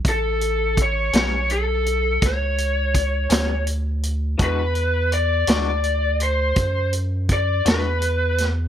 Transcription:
<<
  \new Staff \with { instrumentName = "Lead electric guitar" } { \time 12/8 \key a \major \tempo 4. = 55 a'4 cis''8 cis''8 a'4 cis''2 r4 | b'4 d''8 d''4 c''4 r8 d''8 b'4 r8 | }
  \new Staff \with { instrumentName = "Clean electric guitar" } { \time 12/8 \key a \major r4. <a, g b cis'>8 r2 r8 <a, g b cis'>8 r4 | <e gis d' fis'>8 r4 <e gis d' fis'>8 r2 r8 <e gis d' fis'>8 r4 | }
  \new Staff \with { instrumentName = "Sub bass" } { \clef bass \time 12/8 \key a \major a,,4. b,,4. cis,4. d,4. | e,4. d,4. fis,4. e,4. | }
  \new DrumStaff \with { instrumentName = "Drums" } \drummode { \time 12/8 <hh bd>8 hh8 <hh bd>8 <hh sn>8 hh8 hh8 <hh bd sn>8 hh8 <hh bd>8 <hh sn>8 hh8 hh8 | <hh bd>8 hh8 hh8 <hh sn>8 hh8 hh8 <hh bd>8 hh8 <hh bd>8 <hh sn>8 hh8 <hh sn>8 | }
>>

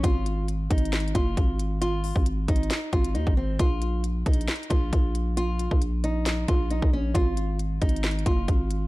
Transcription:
<<
  \new Staff \with { instrumentName = "Nylon-string guitar" } { \time 4/4 \key aes \mixolydian \tempo 4 = 135 f'4 r8 ees'4 f'4. | f'4 r8 ees'4 f'8 ees'8 c'8 | f'4 r8 ees'4 f'4. | f'4 r8 ees'4 f'8 ees'8 des'8 |
f'4 r8 ees'4 f'4. | }
  \new Staff \with { instrumentName = "808-style bass" } { \clef bass \time 4/4 \key aes \mixolydian aes,,4. aes,,4 ges,,8 aes,,4~ | aes,,8. aes,,8. aes,,8 r8 aes,,8 ees,16 aes,,8. | bes,,4. bes,,8 r8 bes,,8 bes,,4~ | bes,,8. bes,,4.~ bes,,16 bes,,8. bes,,8. |
aes,,4. aes,,4 ges,,8 aes,,4 | }
  \new DrumStaff \with { instrumentName = "Drums" } \drummode { \time 4/4 <hh bd>8 hh8 \tuplet 3/2 { hh16 r16 r16 <hh bd>16 hh16 hh16 <hh sn>16 hh16 hh16 <hh bd>16 r16 r16 } <hh bd>8 hh8 | hh8 hho16 bd16 \tuplet 3/2 { hh16 r16 r16 <hh bd>16 hh16 hh16 } <hh sn>8 <hh bd>16 hh16 hh16 bd8. | <hh bd>8 hh8 \tuplet 3/2 { hh16 r16 r16 <hh bd>16 hh16 hh16 <hh sn>16 hh16 hh16 <hh bd>16 r16 r16 } <hh bd>8 hh8 | hh8 hh16 bd16 hh8 hh8 <hh sn>8 <hh bd>8 hh16 bd8. |
<hh bd>8 hh8 \tuplet 3/2 { hh16 r16 r16 <hh bd>16 hh16 hh16 <hh sn>16 hh16 hh16 <hh bd>16 r16 r16 } <hh bd>8 hh8 | }
>>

